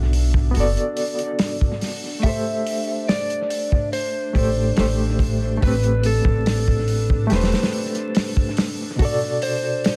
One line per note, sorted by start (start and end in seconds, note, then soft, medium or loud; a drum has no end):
0.00 0.51 B1 medium
0.00 0.48 B3 medium
0.00 9.96 D4 medium
0.00 0.54 F#4 medium
0.00 0.57 A4 medium
0.00 0.52 E5 medium
0.00 2.25 F#5 medium
0.13 open hi-hat medium
0.34 kick medium
0.51 2.17 B3 medium
0.51 2.18 F#4 medium
0.51 open hi-hat medium
0.56 0.75 F#1 medium
0.56 2.20 A4 medium
0.56 2.21 D5 loud
0.77 closed hi-hat soft
0.97 open hi-hat medium
1.19 closed hi-hat soft
1.39 snare loud
1.39 open hi-hat medium
1.61 kick medium
1.81 snare soft
1.81 open hi-hat medium
2.19 4.28 A3 medium
2.19 4.29 G4 medium
2.19 3.10 E5 loud
2.19 open hi-hat medium
2.24 4.31 A4 medium
2.24 kick medium
2.29 4.32 C5 medium
2.67 open hi-hat medium
3.09 3.89 D5 medium
3.09 snare loud
3.09 open hi-hat medium
3.30 closed hi-hat soft
3.50 open hi-hat medium
3.72 kick medium
3.93 5.63 C5 medium
3.93 open hi-hat medium
4.33 4.72 A1 medium
4.33 4.71 A3 medium
4.33 4.72 G4 medium
4.33 4.73 A4 medium
4.33 kick medium
4.33 open hi-hat medium
4.38 4.73 C5 medium
4.76 5.58 A1 medium
4.76 5.56 A3 medium
4.76 5.57 G4 medium
4.76 5.57 A4 medium
4.76 snare loud
4.76 open hi-hat medium
4.80 5.58 C5 medium
5.19 kick medium
5.19 open hi-hat medium
5.58 7.24 A3 medium
5.58 7.25 G4 medium
5.62 6.22 A1 medium
5.62 6.06 B4 medium
5.62 7.27 B4 medium
5.62 kick loud
5.62 open hi-hat medium
5.67 7.28 C4 medium
5.84 closed hi-hat soft
6.03 8.54 A4 medium
6.03 open hi-hat medium
6.25 7.26 A1 medium
6.25 kick medium
6.46 snare loud
6.46 open hi-hat medium
6.68 kick medium
6.88 open hi-hat medium
7.10 kick medium
7.27 8.93 A3 loud
7.27 8.94 G4 medium
7.27 open hi-hat medium
7.32 7.50 E1 medium
7.32 8.96 B4 medium
7.32 snare medium
7.36 8.97 C5 loud
7.41 snare medium
7.41 open hi-hat medium
7.52 snare medium
7.52 open hi-hat medium
7.63 snare medium
7.63 open hi-hat medium
7.73 open hi-hat medium
7.95 closed hi-hat soft
8.15 snare loud
8.15 open hi-hat medium
8.37 kick medium
8.57 snare loud
8.57 open hi-hat medium
8.96 9.96 B2 medium
8.96 9.96 F#4 medium
8.96 kick loud
8.96 open hi-hat medium
9.02 9.96 A4 medium
9.02 9.96 D5 medium
9.42 9.96 C5 loud
9.42 open hi-hat medium
9.84 snare medium
9.84 open hi-hat medium